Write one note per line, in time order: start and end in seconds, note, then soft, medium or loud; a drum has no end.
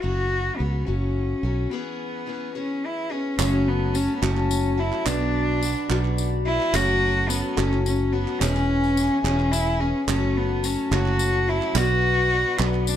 0.01 0.49 F#1 medium
0.01 0.59 F#2 medium
0.01 0.59 C#3 medium
0.01 0.57 F#3 medium
0.01 0.58 A3 medium
0.01 0.60 C#4 medium
0.01 0.58 F#4 loud
0.01 0.60 F#4 medium
0.57 0.83 C#2 medium
0.57 0.87 F#3 medium
0.57 0.86 A3 medium
0.57 0.87 B3 medium
0.61 0.86 C#4 medium
0.61 0.85 F#4 medium
0.86 1.33 F#1 medium
0.86 1.44 F#2 soft
0.86 1.44 C#3 soft
0.86 1.44 F#3 medium
0.86 1.43 A3 soft
0.86 1.72 C#4 medium
0.86 1.44 C#4 medium
0.86 1.42 F#4 medium
1.43 1.66 B1 medium
1.43 1.71 F#3 soft
1.43 1.72 A3 soft
1.43 1.72 C#4 medium
1.43 1.71 F#4 medium
1.70 2.25 E3 medium
1.70 2.55 B3 medium
1.70 2.26 B3 medium
1.70 2.27 C#4 medium
1.70 2.28 G#4 medium
2.26 2.55 E3 medium
2.26 2.55 B3 medium
2.26 2.54 C#4 medium
2.26 2.54 G#4 medium
2.55 3.12 E3 medium
2.55 3.12 B3 medium
2.55 3.11 C#4 medium
2.55 2.87 C#4 medium
2.55 3.09 G#4 medium
2.86 3.13 E4 medium
3.10 3.40 B3 soft
3.10 3.39 C#4 medium
3.10 3.40 C#4 medium
3.10 3.38 G#4 medium
3.39 4.07 F#1 medium
3.39 5.02 F#1 medium
3.39 3.95 F#2 medium
3.39 5.02 F#2 medium
3.39 3.95 C#3 medium
3.39 4.17 F#3 medium
3.39 3.94 F#3 medium
3.39 4.18 A3 medium
3.39 3.94 A3 medium
3.39 4.17 C#4 medium
3.39 3.69 C#4 loud
3.39 3.95 C#4 medium
3.39 8.37 F#4 medium
3.39 3.96 F#4 medium
3.39 5.05 A4 medium
3.39 4.18 A4 medium
3.39 4.17 C#5 loud
3.39 5.05 C#5 medium
3.39 5.05 A5 loud
3.39 clap medium
3.39 tambourine loud
3.68 3.96 B3 medium
3.94 4.22 F#3 medium
3.94 4.22 A3 medium
3.94 4.15 C#4 medium
3.94 4.21 C#4 medium
3.94 4.20 F#4 medium
3.94 tambourine medium
4.16 4.24 B3 medium
4.22 4.91 F#1 loud
4.22 4.79 F#2 soft
4.22 4.79 C#3 medium
4.22 5.01 F#3 medium
4.22 4.80 F#3 medium
4.22 5.01 A3 medium
4.22 4.78 A3 medium
4.22 5.01 C#4 medium
4.22 4.77 C#4 medium
4.22 4.81 C#4 medium
4.22 4.77 F#4 medium
4.22 5.01 A4 medium
4.22 5.01 C#5 medium
4.22 clap medium
4.22 tambourine soft
4.37 clap soft
4.51 tambourine loud
4.77 5.05 F#3 soft
4.77 5.07 A3 medium
4.77 5.07 C#4 medium
4.77 5.07 E4 medium
4.77 5.06 F#4 medium
4.93 clap soft
5.06 6.69 B1 medium
5.06 5.74 B1 loud
5.06 5.62 B2 medium
5.06 6.70 B2 medium
5.06 5.84 F#3 medium
5.06 5.61 F#3 medium
5.06 5.84 B3 medium
5.06 5.61 B3 medium
5.06 5.85 D4 medium
5.06 6.18 D4 loud
5.06 5.62 D4 medium
5.06 5.64 F#4 medium
5.06 5.85 B4 medium
5.06 6.72 B4 medium
5.06 5.85 D5 medium
5.06 6.72 D5 medium
5.06 6.72 B5 medium
5.06 clap loud
5.06 tambourine loud
5.61 5.90 F#3 medium
5.61 5.89 B3 medium
5.61 5.89 D4 medium
5.61 5.88 F#4 medium
5.61 tambourine loud
5.89 6.58 B1 loud
5.89 6.47 B2 medium
5.89 6.68 F#3 medium
5.89 6.46 F#3 medium
5.89 6.68 B3 medium
5.89 6.46 B3 medium
5.89 6.68 D4 medium
5.89 6.46 D4 medium
5.89 6.44 F#4 medium
5.89 6.68 B4 medium
5.89 6.68 D5 medium
5.89 clap medium
5.89 tambourine soft
6.05 clap soft
6.18 tambourine loud
6.45 6.75 B3 soft
6.45 6.74 D4 medium
6.45 6.76 E4 loud
6.45 6.73 F#4 medium
6.61 clap soft
6.73 8.37 F#1 medium
6.73 7.41 F#1 medium
6.73 7.29 F#2 medium
6.73 8.37 F#2 medium
6.73 7.30 C#3 medium
6.73 7.52 F#3 medium
6.73 7.28 F#3 medium
6.73 7.52 A3 medium
6.73 7.29 A3 loud
6.73 7.52 C#4 medium
6.73 7.31 C#4 loud
6.73 7.30 F#4 loud
6.73 7.31 F#4 medium
6.73 7.52 A4 medium
6.73 8.39 A4 medium
6.73 7.52 C#5 medium
6.73 8.39 C#5 medium
6.73 8.39 A5 loud
6.73 clap medium
6.73 tambourine medium
7.29 7.57 F#3 medium
7.29 7.56 A3 medium
7.29 7.59 B3 loud
7.29 7.56 C#4 medium
7.29 7.56 F#4 medium
7.29 tambourine loud
7.57 8.25 F#1 loud
7.57 8.14 F#2 medium
7.57 8.14 C#3 medium
7.57 8.35 F#3 medium
7.57 8.13 F#3 medium
7.57 8.35 A3 medium
7.57 8.13 A3 medium
7.57 8.35 C#4 medium
7.57 8.14 C#4 medium
7.57 7.84 C#4 loud
7.57 8.11 F#4 medium
7.57 8.35 A4 medium
7.57 8.35 C#5 medium
7.57 clap medium
7.57 tambourine soft
7.73 clap soft
7.85 8.14 C#4 loud
7.85 tambourine medium
8.12 8.40 F#3 soft
8.12 8.41 A3 medium
8.12 8.41 B3 loud
8.12 8.41 C#4 medium
8.12 8.41 F#4 medium
8.28 clap soft
8.40 9.09 E1 loud
8.40 10.04 E2 medium
8.40 10.04 E3 medium
8.40 8.95 E3 medium
8.40 9.19 G#3 medium
8.40 8.97 B3 medium
8.40 9.24 C#4 loud
8.40 9.19 C#4 medium
8.40 8.98 C#4 medium
8.40 9.19 E4 medium
8.40 10.07 E4 medium
8.40 8.98 G#4 loud
8.40 9.19 B4 medium
8.40 10.07 B4 medium
8.40 9.19 C#5 medium
8.40 11.72 C#5 medium
8.40 10.07 G#5 medium
8.40 clap medium
8.40 tambourine medium
8.56 clap soft
8.56 tambourine soft
8.84 tambourine soft
8.97 9.25 E3 medium
8.97 9.25 B3 medium
8.97 9.24 C#4 medium
8.97 9.23 G#4 medium
8.97 tambourine loud
9.24 9.92 E1 loud
9.24 9.81 E3 medium
9.24 10.03 G#3 medium
9.24 9.81 B3 medium
9.24 10.03 C#4 medium
9.24 9.53 C#4 loud
9.24 9.80 C#4 medium
9.24 10.02 E4 medium
9.24 9.79 G#4 medium
9.24 10.03 B4 medium
9.24 10.03 C#5 medium
9.24 clap medium
9.40 clap soft
9.52 9.82 E4 loud
9.52 clap soft
9.52 tambourine loud
9.67 tambourine soft
9.80 10.09 B3 soft
9.80 10.08 C#4 medium
9.80 10.09 C#4 medium
9.80 10.08 G#4 medium
10.07 10.76 F#1 medium
10.07 11.71 F#1 medium
10.07 11.71 F#2 medium
10.07 10.64 F#2 medium
10.07 10.64 C#3 medium
10.07 10.86 F#3 medium
10.07 10.62 F#3 medium
10.07 10.86 A3 medium
10.07 10.63 A3 loud
10.07 10.86 C#4 medium
10.07 10.38 C#4 loud
10.07 10.64 C#4 medium
10.07 12.96 F#4 medium
10.07 10.65 F#4 medium
10.07 10.86 A4 medium
10.07 11.74 A4 medium
10.07 10.86 C#5 medium
10.07 11.74 A5 loud
10.07 clap loud
10.07 tambourine medium
10.37 10.67 B3 medium
10.63 10.91 F#3 medium
10.63 10.92 A3 medium
10.63 10.91 C#4 medium
10.63 10.95 C#4 medium
10.63 10.91 F#4 medium
10.63 tambourine loud
10.91 11.59 F#1 medium
10.91 11.49 F#2 medium
10.91 11.49 C#3 medium
10.91 11.70 F#3 medium
10.91 11.50 F#3 medium
10.91 11.70 A3 medium
10.91 11.48 A3 medium
10.91 11.70 C#4 medium
10.91 11.48 C#4 medium
10.91 11.47 F#4 medium
10.91 11.50 F#4 loud
10.91 11.70 A4 medium
10.91 11.70 C#5 medium
10.91 clap medium
10.91 tambourine soft
11.06 clap soft
11.19 tambourine loud
11.48 11.75 F#3 medium
11.48 11.77 A3 medium
11.48 11.76 C#4 medium
11.48 11.78 E4 loud
11.48 11.76 F#4 medium
11.62 clap soft
11.74 12.96 B1 medium
11.74 12.43 B1 loud
11.74 12.96 B2 medium
11.74 12.32 B2 medium
11.74 12.54 F#3 medium
11.74 12.30 F#3 medium
11.74 12.54 B3 medium
11.74 12.31 B3 medium
11.74 12.54 D4 medium
11.74 12.32 D4 medium
11.74 12.61 F#4 loud
11.74 12.34 F#4 medium
11.74 12.96 B4 medium
11.74 12.54 B4 medium
11.74 12.96 D5 medium
11.74 12.54 D5 medium
11.74 12.96 B5 loud
11.74 clap loud
11.74 tambourine loud
12.31 12.59 F#3 medium
12.31 12.59 B3 medium
12.31 12.58 D4 medium
12.31 12.57 F#4 medium
12.58 12.96 B1 loud
12.58 12.96 B2 medium
12.58 12.96 F#3 medium
12.58 12.96 B3 medium
12.58 12.90 B3 medium
12.58 12.96 B3 medium
12.58 12.96 D4 medium
12.58 12.96 F#4 medium
12.58 12.96 B4 medium
12.58 12.96 D5 medium
12.58 clap medium
12.58 tambourine soft
12.74 clap soft
12.87 12.96 D4 medium
12.87 tambourine loud